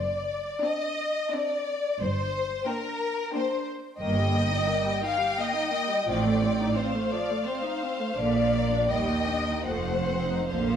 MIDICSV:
0, 0, Header, 1, 6, 480
1, 0, Start_track
1, 0, Tempo, 700117
1, 904, Tempo, 673401
1, 1385, Time_signature, 3, 2, 24, 8
1, 3304, Tempo, 698487
1, 5704, Tempo, 720288
1, 6184, Tempo, 772201
1, 6664, Tempo, 829876
1, 7296, End_track
2, 0, Start_track
2, 0, Title_t, "Violin section"
2, 0, Program_c, 0, 48
2, 428, Note_on_c, 0, 81, 49
2, 784, Note_off_c, 0, 81, 0
2, 895, Note_on_c, 0, 81, 53
2, 1257, Note_off_c, 0, 81, 0
2, 1854, Note_on_c, 0, 79, 54
2, 2210, Note_off_c, 0, 79, 0
2, 2339, Note_on_c, 0, 79, 56
2, 2694, Note_off_c, 0, 79, 0
2, 2816, Note_on_c, 0, 79, 55
2, 4716, Note_off_c, 0, 79, 0
2, 4753, Note_on_c, 0, 77, 54
2, 6175, Note_on_c, 0, 79, 49
2, 6188, Note_off_c, 0, 77, 0
2, 6649, Note_off_c, 0, 79, 0
2, 6659, Note_on_c, 0, 78, 45
2, 7139, Note_off_c, 0, 78, 0
2, 7142, Note_on_c, 0, 77, 47
2, 7296, Note_off_c, 0, 77, 0
2, 7296, End_track
3, 0, Start_track
3, 0, Title_t, "Violin section"
3, 0, Program_c, 1, 48
3, 0, Note_on_c, 1, 74, 68
3, 418, Note_off_c, 1, 74, 0
3, 436, Note_on_c, 1, 75, 71
3, 909, Note_off_c, 1, 75, 0
3, 914, Note_on_c, 1, 74, 71
3, 1390, Note_off_c, 1, 74, 0
3, 1396, Note_on_c, 1, 72, 73
3, 1868, Note_off_c, 1, 72, 0
3, 1872, Note_on_c, 1, 70, 72
3, 2341, Note_off_c, 1, 70, 0
3, 2345, Note_on_c, 1, 72, 67
3, 2574, Note_off_c, 1, 72, 0
3, 2821, Note_on_c, 1, 75, 80
3, 3515, Note_off_c, 1, 75, 0
3, 3551, Note_on_c, 1, 77, 80
3, 3784, Note_off_c, 1, 77, 0
3, 3787, Note_on_c, 1, 75, 82
3, 4265, Note_off_c, 1, 75, 0
3, 4265, Note_on_c, 1, 74, 76
3, 4734, Note_on_c, 1, 72, 68
3, 4736, Note_off_c, 1, 74, 0
3, 4972, Note_on_c, 1, 74, 73
3, 4978, Note_off_c, 1, 72, 0
3, 5211, Note_on_c, 1, 72, 63
3, 5217, Note_off_c, 1, 74, 0
3, 5697, Note_off_c, 1, 72, 0
3, 5698, Note_on_c, 1, 74, 77
3, 6181, Note_off_c, 1, 74, 0
3, 6183, Note_on_c, 1, 75, 71
3, 6655, Note_on_c, 1, 72, 66
3, 6663, Note_off_c, 1, 75, 0
3, 7121, Note_off_c, 1, 72, 0
3, 7128, Note_on_c, 1, 72, 68
3, 7296, Note_off_c, 1, 72, 0
3, 7296, End_track
4, 0, Start_track
4, 0, Title_t, "Viola section"
4, 0, Program_c, 2, 48
4, 425, Note_on_c, 2, 62, 50
4, 428, Note_on_c, 2, 60, 48
4, 782, Note_off_c, 2, 62, 0
4, 784, Note_off_c, 2, 60, 0
4, 902, Note_on_c, 2, 60, 50
4, 902, Note_on_c, 2, 62, 50
4, 1260, Note_off_c, 2, 62, 0
4, 1261, Note_off_c, 2, 60, 0
4, 1863, Note_on_c, 2, 62, 55
4, 1865, Note_on_c, 2, 58, 52
4, 2215, Note_off_c, 2, 62, 0
4, 2216, Note_off_c, 2, 58, 0
4, 2337, Note_on_c, 2, 62, 56
4, 2339, Note_on_c, 2, 58, 57
4, 2692, Note_off_c, 2, 62, 0
4, 2694, Note_off_c, 2, 58, 0
4, 2818, Note_on_c, 2, 58, 52
4, 2820, Note_on_c, 2, 51, 55
4, 2931, Note_off_c, 2, 51, 0
4, 2932, Note_on_c, 2, 55, 51
4, 3045, Note_off_c, 2, 58, 0
4, 3054, Note_on_c, 2, 58, 50
4, 3056, Note_off_c, 2, 55, 0
4, 3169, Note_on_c, 2, 63, 51
4, 3178, Note_off_c, 2, 58, 0
4, 3286, Note_on_c, 2, 58, 51
4, 3297, Note_off_c, 2, 63, 0
4, 3408, Note_on_c, 2, 55, 49
4, 3413, Note_off_c, 2, 58, 0
4, 3533, Note_off_c, 2, 55, 0
4, 3533, Note_on_c, 2, 51, 49
4, 3649, Note_on_c, 2, 55, 49
4, 3656, Note_off_c, 2, 51, 0
4, 3765, Note_on_c, 2, 58, 53
4, 3773, Note_off_c, 2, 55, 0
4, 3883, Note_on_c, 2, 63, 49
4, 3892, Note_off_c, 2, 58, 0
4, 4011, Note_off_c, 2, 63, 0
4, 4011, Note_on_c, 2, 58, 46
4, 4134, Note_on_c, 2, 55, 47
4, 4136, Note_off_c, 2, 58, 0
4, 4254, Note_on_c, 2, 60, 52
4, 4256, Note_on_c, 2, 53, 51
4, 4258, Note_off_c, 2, 55, 0
4, 4371, Note_off_c, 2, 53, 0
4, 4373, Note_on_c, 2, 57, 52
4, 4489, Note_off_c, 2, 60, 0
4, 4498, Note_off_c, 2, 57, 0
4, 4498, Note_on_c, 2, 60, 50
4, 4615, Note_on_c, 2, 63, 49
4, 4621, Note_off_c, 2, 60, 0
4, 4736, Note_on_c, 2, 60, 51
4, 4739, Note_off_c, 2, 63, 0
4, 4856, Note_on_c, 2, 57, 46
4, 4859, Note_off_c, 2, 60, 0
4, 4978, Note_on_c, 2, 53, 49
4, 4979, Note_off_c, 2, 57, 0
4, 5099, Note_on_c, 2, 57, 46
4, 5100, Note_off_c, 2, 53, 0
4, 5214, Note_on_c, 2, 60, 51
4, 5221, Note_off_c, 2, 57, 0
4, 5335, Note_on_c, 2, 63, 46
4, 5338, Note_off_c, 2, 60, 0
4, 5457, Note_on_c, 2, 60, 43
4, 5459, Note_off_c, 2, 63, 0
4, 5575, Note_on_c, 2, 57, 47
4, 5580, Note_off_c, 2, 60, 0
4, 5688, Note_on_c, 2, 50, 53
4, 5699, Note_off_c, 2, 57, 0
4, 5805, Note_off_c, 2, 50, 0
4, 5814, Note_on_c, 2, 53, 47
4, 5936, Note_on_c, 2, 58, 45
4, 5937, Note_off_c, 2, 53, 0
4, 6056, Note_on_c, 2, 62, 45
4, 6059, Note_off_c, 2, 58, 0
4, 6181, Note_off_c, 2, 62, 0
4, 6182, Note_on_c, 2, 55, 45
4, 6183, Note_on_c, 2, 58, 44
4, 6287, Note_off_c, 2, 58, 0
4, 6291, Note_off_c, 2, 55, 0
4, 6294, Note_on_c, 2, 58, 42
4, 6416, Note_off_c, 2, 58, 0
4, 6417, Note_on_c, 2, 62, 44
4, 6539, Note_off_c, 2, 62, 0
4, 6542, Note_on_c, 2, 63, 42
4, 6663, Note_on_c, 2, 53, 42
4, 6663, Note_on_c, 2, 57, 42
4, 6664, Note_off_c, 2, 63, 0
4, 6771, Note_off_c, 2, 53, 0
4, 6777, Note_off_c, 2, 57, 0
4, 6784, Note_on_c, 2, 57, 39
4, 6900, Note_off_c, 2, 57, 0
4, 6901, Note_on_c, 2, 60, 40
4, 7017, Note_on_c, 2, 63, 40
4, 7020, Note_off_c, 2, 60, 0
4, 7140, Note_off_c, 2, 63, 0
4, 7140, Note_on_c, 2, 58, 41
4, 7141, Note_on_c, 2, 50, 44
4, 7254, Note_off_c, 2, 50, 0
4, 7263, Note_on_c, 2, 53, 40
4, 7296, Note_off_c, 2, 53, 0
4, 7296, Note_off_c, 2, 58, 0
4, 7296, End_track
5, 0, Start_track
5, 0, Title_t, "Cello section"
5, 0, Program_c, 3, 48
5, 0, Note_on_c, 3, 42, 60
5, 327, Note_off_c, 3, 42, 0
5, 1391, Note_on_c, 3, 43, 65
5, 1767, Note_off_c, 3, 43, 0
5, 2821, Note_on_c, 3, 43, 62
5, 3224, Note_off_c, 3, 43, 0
5, 4260, Note_on_c, 3, 45, 68
5, 4663, Note_off_c, 3, 45, 0
5, 5702, Note_on_c, 3, 46, 63
5, 6101, Note_off_c, 3, 46, 0
5, 6181, Note_on_c, 3, 39, 51
5, 6580, Note_off_c, 3, 39, 0
5, 6666, Note_on_c, 3, 41, 50
5, 7061, Note_off_c, 3, 41, 0
5, 7141, Note_on_c, 3, 46, 52
5, 7296, Note_off_c, 3, 46, 0
5, 7296, End_track
6, 0, Start_track
6, 0, Title_t, "Double bass section"
6, 0, Program_c, 4, 48
6, 0, Note_on_c, 4, 30, 56
6, 327, Note_off_c, 4, 30, 0
6, 1385, Note_on_c, 4, 31, 60
6, 1763, Note_off_c, 4, 31, 0
6, 2818, Note_on_c, 4, 31, 62
6, 3222, Note_off_c, 4, 31, 0
6, 4262, Note_on_c, 4, 33, 62
6, 4664, Note_off_c, 4, 33, 0
6, 5696, Note_on_c, 4, 34, 59
6, 6098, Note_off_c, 4, 34, 0
6, 6182, Note_on_c, 4, 39, 53
6, 6580, Note_off_c, 4, 39, 0
6, 6658, Note_on_c, 4, 29, 53
6, 7057, Note_off_c, 4, 29, 0
6, 7137, Note_on_c, 4, 34, 50
6, 7296, Note_off_c, 4, 34, 0
6, 7296, End_track
0, 0, End_of_file